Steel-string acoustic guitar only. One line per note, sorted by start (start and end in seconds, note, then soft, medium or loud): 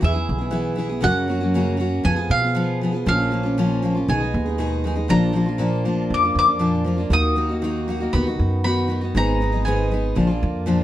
0.01 0.14 E3 medium
0.01 0.15 B3 medium
0.01 0.14 E4 medium
0.01 0.12 G#4 medium
0.13 0.40 B3 soft
0.13 0.40 E4 soft
0.13 0.37 G#4 medium
0.38 0.50 B3 soft
0.38 0.51 E4 soft
0.38 0.51 G#4 medium
0.51 0.74 E3 medium
0.51 0.76 B3 medium
0.51 0.77 E4 medium
0.51 0.78 G#4 medium
0.76 0.90 E3 medium
0.76 0.91 B3 medium
0.76 0.90 E4 medium
0.76 0.88 G#4 medium
0.89 1.02 B3 soft
0.89 1.02 E4 medium
0.89 1.03 G#4 soft
1.01 1.28 F#2 medium
1.01 1.28 C#3 medium
1.01 1.26 F#3 medium
1.01 1.28 A#3 medium
1.01 1.28 C#4 medium
1.01 1.29 F#4 medium
1.28 1.41 F#3 medium
1.28 1.41 A#3 medium
1.28 1.40 C#4 medium
1.28 1.39 F#4 medium
1.41 1.54 F#3 soft
1.41 1.54 A#3 soft
1.41 1.55 C#4 soft
1.41 1.54 F#4 medium
1.54 1.80 F#2 medium
1.54 1.80 C#3 medium
1.54 1.76 F#3 medium
1.54 1.77 A#3 medium
1.54 1.78 C#4 medium
1.54 1.79 F#4 medium
1.77 2.03 F#3 medium
1.77 2.04 A#3 medium
1.77 2.04 C#4 medium
1.77 2.06 F#4 medium
2.03 2.17 F3 medium
2.03 2.18 B3 medium
2.03 2.16 F4 medium
2.03 2.15 G#4 medium
2.16 2.43 B3 soft
2.16 2.42 F4 soft
2.16 2.40 G#4 medium
2.42 2.54 B3 soft
2.42 2.55 F4 medium
2.42 2.55 G#4 medium
2.55 2.80 F3 medium
2.55 2.81 B3 medium
2.55 2.82 F4 medium
2.55 2.82 G#4 medium
2.81 2.94 F3 medium
2.81 2.95 B3 medium
2.81 2.93 F4 medium
2.81 2.91 G#4 medium
2.92 3.07 B3 soft
2.92 3.07 F4 soft
2.92 3.06 G#4 soft
3.06 3.32 A#2 medium
3.06 3.30 F3 medium
3.06 3.31 A#3 medium
3.06 3.32 C#4 medium
3.06 3.33 F4 medium
3.31 3.44 F3 medium
3.31 3.45 A#3 medium
3.31 3.44 C#4 medium
3.31 3.42 F4 medium
3.43 3.58 A#3 soft
3.43 3.58 C#4 soft
3.43 3.57 F4 soft
3.58 3.83 A#2 medium
3.58 3.81 F3 medium
3.58 3.82 A#3 medium
3.58 3.83 C#4 medium
3.58 3.84 F4 medium
3.82 3.95 F3 medium
3.82 3.96 A#3 medium
3.82 3.95 C#4 medium
3.82 3.93 F4 medium
3.95 4.09 A#3 soft
3.95 4.09 C#4 soft
3.95 4.08 F4 soft
4.08 4.21 B2 medium
4.08 4.21 D#3 medium
4.08 4.22 G#3 medium
4.08 4.22 D#4 medium
4.08 4.19 G#4 medium
4.20 4.48 G#3 soft
4.20 4.46 D#4 soft
4.20 4.44 G#4 medium
4.46 4.58 G#3 soft
4.46 4.59 D#4 soft
4.46 4.59 G#4 medium
4.58 4.84 B2 medium
4.58 4.83 D#3 medium
4.58 4.84 G#3 medium
4.58 4.85 D#4 medium
4.58 4.85 G#4 medium
4.84 4.97 D#3 medium
4.84 4.97 G#3 medium
4.84 4.95 D#4 medium
4.84 4.94 G#4 medium
4.95 5.09 G#3 soft
4.95 5.09 D#4 soft
4.95 5.09 G#4 soft
5.08 5.34 A#2 medium
5.08 5.32 F3 medium
5.08 5.32 A#3 medium
5.08 5.34 D4 medium
5.08 5.35 F4 medium
5.33 5.47 F3 medium
5.33 5.47 A#3 medium
5.33 5.47 D4 medium
5.33 5.45 F4 medium
5.46 5.58 A#3 soft
5.46 5.59 D4 soft
5.46 5.60 F4 soft
5.58 5.85 A#2 medium
5.58 5.84 F3 medium
5.58 5.84 A#3 medium
5.58 5.86 D4 medium
5.58 5.86 F4 medium
5.85 6.23 F3 medium
5.85 6.24 A#3 medium
5.85 6.23 D4 medium
5.85 6.21 F4 medium
6.23 6.48 A#3 soft
6.23 6.47 D4 soft
6.23 6.45 F4 medium
6.46 6.59 A#3 soft
6.46 6.59 D4 soft
6.46 6.60 F4 medium
6.59 6.86 A#2 medium
6.59 6.83 F3 medium
6.59 6.85 A#3 medium
6.59 6.85 D4 medium
6.59 6.86 F4 medium
6.84 6.99 F3 medium
6.84 6.98 A#3 medium
6.84 6.97 D4 medium
6.84 6.96 F4 medium
6.97 7.10 A#3 soft
6.97 7.11 D4 soft
6.97 7.11 F4 medium
7.10 7.34 D#3 medium
7.10 7.35 A#3 medium
7.10 7.36 D#4 medium
7.10 7.37 F#4 medium
7.35 7.49 D#3 medium
7.35 7.50 A#3 medium
7.35 7.50 D#4 medium
7.35 7.48 F#4 medium
7.49 7.63 A#3 soft
7.49 7.63 D#4 soft
7.49 7.62 F#4 medium
7.62 7.87 D#3 medium
7.62 7.87 A#3 medium
7.62 7.89 D#4 medium
7.62 7.89 F#4 medium
7.88 8.01 D#3 medium
7.88 8.01 A#3 medium
7.88 8.01 D#4 medium
7.88 7.99 F#4 medium
8.00 8.14 A#3 soft
8.00 8.14 D#4 soft
8.00 8.13 F#4 medium
8.14 8.26 D#3 medium
8.14 8.27 B3 medium
8.14 8.27 D#4 medium
8.14 8.26 F#4 medium
8.27 8.64 B3 soft
8.27 8.65 D#4 soft
8.27 8.65 F#4 soft
8.64 8.87 D#3 medium
8.64 8.88 B3 medium
8.64 8.89 D#4 medium
8.64 8.90 F#4 medium
8.88 9.01 D#3 medium
8.88 9.02 B3 medium
8.88 9.02 D#4 medium
8.88 9.00 F#4 medium
9.01 9.16 B3 soft
9.01 9.15 D#4 soft
9.01 9.14 F#4 medium
9.15 9.40 G#2 medium
9.15 9.41 D#3 medium
9.15 9.39 G#3 medium
9.15 9.41 B3 medium
9.15 9.41 D#4 medium
9.15 9.41 G#4 medium
9.40 9.53 G#3 medium
9.40 9.53 B3 medium
9.40 9.52 D#4 medium
9.40 9.51 G#4 medium
9.52 9.66 G#3 soft
9.52 9.66 B3 soft
9.52 9.66 D#4 soft
9.52 9.65 G#4 medium
9.66 9.91 G#2 medium
9.66 9.91 D#3 medium
9.66 9.90 G#3 medium
9.66 9.91 B3 medium
9.66 9.92 D#4 medium
9.66 9.92 G#4 medium
9.91 10.15 G#3 medium
9.91 10.16 B3 medium
9.91 10.17 D#4 medium
9.91 10.17 G#4 medium
10.15 10.28 A#2 medium
10.15 10.29 F3 medium
10.15 10.29 A#3 medium
10.15 10.28 D4 medium
10.15 10.26 F4 medium
10.27 10.66 A#3 soft
10.27 10.66 D4 medium
10.27 10.66 F4 medium
10.66 10.84 A#2 medium
10.66 10.84 F3 medium
10.66 10.84 A#3 medium
10.66 10.84 D4 loud
10.66 10.84 F4 medium